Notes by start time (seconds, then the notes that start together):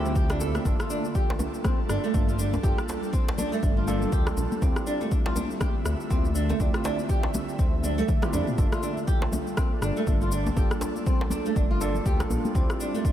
Already playing: D2 D3 A3 C4 E4 F4 G4 E5
0.05 C4, low conga, shaker
0.15 G4, kick, shaker
0.30 D4, cross-stick, djembe slap, muted conga, shaker
0.40 A4, high conga, djembe tone, shaker
0.55 D4, cross-stick, muted conga, high conga, shaker
0.65 G1 G3 A#3 D4 F4 A4, kick, djembe tone, shaker
0.80 F4, cross-stick, muted conga, shaker
0.90 D4, shaker
1.04 high conga, shaker
1.15 G4, kick, shaker
1.30 djembe slap
1.39 muted conga, djembe tone, high conga, low conga, shaker
1.54 shaker
1.64 C4, kick, cross-stick, muted conga, djembe tone, high conga, shaker
1.89 G1 D4, cross-stick, muted conga, high conga, shaker
2.04 A3, shaker
2.14 G1 A#3 D4 F4 A4, kick, high conga, low conga, shaker
2.28 F4, muted conga, shaker
2.39 D4, shaker
2.53 muted conga, high conga, djembe tone, shaker
2.63 G1 A#3 F4 G4 A4, kick, djembe tone, shaker
2.78 cross-stick, muted conga, shaker
2.89 djembe slap, shaker
3.02 high conga, shaker
3.13 C4, kick, muted conga, shaker
3.29 djembe slap
3.38 D4, muted conga, djembe tone, high conga, low conga, shaker
3.52 A3, shaker
3.63 G1 D4, kick, muted conga, shaker
3.77 F4
3.88 A#3 D4 F4 A4, muted conga, high conga, shaker
4.02 low conga, shaker
4.12 D2 G4, kick, shaker
4.27 cross-stick, muted conga, djembe slap, shaker
4.37 A#1, djembe tone, high conga, shaker
4.52 muted conga, high conga, shaker
4.62 D2 D3 A3 C4 E4 F4 G4 E5, kick, djembe tone, shaker
4.76 cross-stick, muted conga, shaker
4.87 D4, shaker
5.01 A3, high conga, shaker
5.11 D4, kick, muted conga, shaker
5.26 F4, djembe slap
5.36 D4, muted conga, djembe tone, high conga, low conga, shaker
5.51 shaker
5.61 G4, kick, cross-stick, muted conga, djembe tone, high conga, shaker
5.85 D2, cross-stick, muted conga, high conga, shaker
6.00 shaker
6.10 D2 C4 E4 F4 G4, kick, high conga, low conga, shaker
6.25 muted conga, shaker
6.35 D4, shaker
6.49 A3, muted conga, high conga, djembe tone, shaker
6.60 D2 C4 D4 E4 F4 G4, kick, djembe tone, shaker
6.74 F4, cross-stick, muted conga, shaker
6.84 D4, djembe slap, shaker
6.99 high conga, shaker
7.09 G4, kick, muted conga, shaker
7.23 djembe slap
7.34 muted conga, djembe tone, high conga, low conga, shaker
7.49 shaker
7.59 D2 C4, kick, muted conga, shaker
7.84 D4, high tom, muted conga, high conga, shaker
7.98 A3, low conga, shaker
8.08 D4, kick, mid tom, shaker
8.22 C4 E4 F4 G4, cross-stick, mid tom, djembe slap, muted conga, shaker
8.33 F2 D4, djembe tone, high conga, shaker
8.47 mid tom, muted conga, high conga, shaker
8.58 G1 G3 A#3 D4 F4 A4, kick, djembe tone, shaker
8.72 F4, cross-stick, muted conga, shaker
8.83 D4, shaker
8.97 high conga, shaker
9.07 G4, kick, muted conga, shaker
9.22 djembe slap
9.32 muted conga, djembe tone, high conga, low conga, shaker
9.47 shaker
9.57 C4, kick, cross-stick, muted conga, djembe tone, high conga, shaker
9.82 G1 D4, cross-stick, muted conga, high conga, shaker
9.97 A3, shaker
10.07 G1 A#3 D4 F4 A4, kick, high conga, low conga, shaker
10.21 F4, muted conga, shaker
10.32 D4, shaker
10.46 muted conga, djembe tone, high conga, shaker
10.57 G1 A#3 F4 G4 A4, kick, djembe tone, shaker
10.71 cross-stick, muted conga, shaker
10.81 djembe slap, shaker
10.96 high conga, shaker
11.06 C4, kick, muted conga, shaker
11.21 djembe slap
11.30 D4, muted conga, high conga, djembe tone, low conga, shaker
11.46 A3, shaker
11.56 G1 D4, kick, muted conga, shaker
11.71 F4
11.81 A#3 D4 F4 A4, muted conga, high conga, shaker
11.95 low conga, shaker
12.06 D2 G4, kick, shaker
12.20 cross-stick, djembe slap, muted conga, shaker
12.30 A#1, high conga, djembe tone, shaker
12.45 muted conga, high conga, shaker
12.55 D2 D3 A3 C4 E4 F4 G4 E5, kick, djembe tone, shaker
12.69 cross-stick, muted conga, shaker
12.80 D4, shaker
12.94 A3, high conga, shaker
13.05 D4, kick, shaker